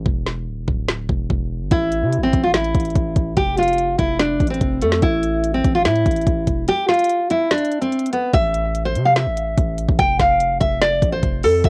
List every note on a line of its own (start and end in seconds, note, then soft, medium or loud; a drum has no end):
0.06 0.49 E1 loud
0.06 kick loud
0.27 snare medium
0.47 0.59 D1 loud
0.58 0.67 E1 medium
0.68 1.08 D1 loud
0.68 kick medium
0.89 snare loud
1.09 1.29 E1 loud
1.09 kick loud
1.30 1.62 E1 loud
1.30 kick loud
1.61 1.71 G1 loud
1.71 2.04 A1 loud
1.71 2.20 E4 loud
1.71 kick loud
1.71 closed hi-hat medium
1.92 closed hi-hat medium
2.02 2.19 C3 loud
2.13 closed hi-hat medium
2.18 2.33 A1 loud
2.23 2.41 C4 medium
2.33 2.73 A1 loud
2.33 kick medium
2.33 closed hi-hat medium
2.44 2.53 F4 medium
2.54 3.33 E4 medium
2.54 snare loud
2.54 closed hi-hat medium
2.64 closed hi-hat soft
2.75 2.95 A1 loud
2.75 kick loud
2.75 closed hi-hat medium
2.80 closed hi-hat medium
2.85 closed hi-hat medium
2.90 closed hi-hat soft
2.96 3.15 A1 loud
2.96 kick loud
2.96 closed hi-hat medium
3.16 3.36 A1 loud
3.16 kick loud
3.16 closed hi-hat medium
3.37 3.96 F1 loud
3.37 3.55 G4 loud
3.37 kick loud
3.37 closed hi-hat medium
3.58 3.97 F4 medium
3.58 closed hi-hat medium
3.63 closed hi-hat medium
3.68 closed hi-hat soft
3.73 closed hi-hat soft
3.78 closed hi-hat medium
3.98 4.39 F1 loud
3.98 4.17 E4 medium
3.98 kick medium
3.98 closed hi-hat medium
4.19 4.49 D4 loud
4.19 snare loud
4.19 closed hi-hat medium
4.40 4.60 A1 loud
4.40 kick medium
4.40 closed hi-hat medium
4.47 4.80 C4 medium
4.47 closed hi-hat medium
4.54 closed hi-hat medium
4.61 4.83 F1 loud
4.61 kick loud
4.61 closed hi-hat medium
4.82 5.01 F2 loud
4.82 5.00 A3 medium
4.82 closed hi-hat medium
4.92 snare loud
5.02 5.62 A1 loud
5.02 5.51 E4 medium
5.02 kick loud
5.02 closed hi-hat medium
5.23 closed hi-hat medium
5.44 closed hi-hat medium
5.54 5.72 C4 medium
5.64 5.87 A1 loud
5.64 kick medium
5.64 closed hi-hat medium
5.75 5.84 F4 medium
5.85 6.05 A2 loud
5.85 6.64 E4 medium
5.85 snare loud
5.85 closed hi-hat medium
5.95 closed hi-hat soft
6.06 6.26 A1 loud
6.06 kick medium
6.06 closed hi-hat medium
6.11 closed hi-hat medium
6.16 closed hi-hat medium
6.21 closed hi-hat soft
6.27 6.46 A1 loud
6.27 kick loud
6.27 closed hi-hat medium
6.47 6.68 E1 loud
6.47 kick loud
6.47 closed hi-hat medium
6.68 6.86 G4 loud
6.68 closed hi-hat medium
6.88 7.27 F4 medium
6.88 snare medium
6.88 closed hi-hat soft
6.94 closed hi-hat medium
6.99 closed hi-hat medium
7.04 closed hi-hat medium
7.09 closed hi-hat medium
7.30 7.48 E4 medium
7.30 closed hi-hat medium
7.51 7.80 D4 medium
7.51 snare loud
7.51 closed hi-hat medium
7.58 closed hi-hat medium
7.64 closed hi-hat medium
7.71 closed hi-hat medium
7.81 8.11 C4 medium
7.81 closed hi-hat medium
7.92 closed hi-hat soft
7.99 closed hi-hat medium
8.06 closed hi-hat medium
8.13 8.31 B3 medium
8.13 closed hi-hat medium
8.33 8.97 A1 loud
8.33 8.82 E5 loud
8.33 kick loud
8.33 closed hi-hat medium
8.54 closed hi-hat medium
8.75 closed hi-hat medium
8.85 9.03 C5 medium
8.95 9.28 C3 loud
8.95 closed hi-hat medium
9.06 9.15 F5 medium
9.16 9.95 E5 medium
9.16 snare loud
9.16 closed hi-hat medium
9.26 9.56 A1 loud
9.37 closed hi-hat medium
9.58 9.87 A1 loud
9.58 kick loud
9.58 closed hi-hat medium
9.78 closed hi-hat medium
9.89 9.98 A1 loud
9.89 kick loud
9.99 10.19 F1 loud
9.99 10.17 G5 loud
9.99 kick loud
9.99 closed hi-hat medium
10.20 10.59 F1 loud
10.20 10.59 F5 medium
10.20 kick loud
10.20 snare medium
10.20 closed hi-hat medium
10.40 closed hi-hat medium
10.60 11.01 F1 loud
10.60 10.79 E5 medium
10.60 kick medium
10.60 closed hi-hat medium
10.82 11.11 D5 loud
10.82 snare loud
10.82 closed hi-hat medium
11.02 11.22 A1 loud
11.02 kick loud
11.02 closed hi-hat medium
11.12 11.42 C5 medium
11.23 11.45 F1 loud
11.23 kick loud
11.23 closed hi-hat medium
11.44 11.63 F2 loud
11.44 11.62 A4 medium
11.44 open hi-hat medium
11.64 11.69 A1 loud
11.64 11.69 E5 medium
11.64 kick loud
11.64 closed hi-hat medium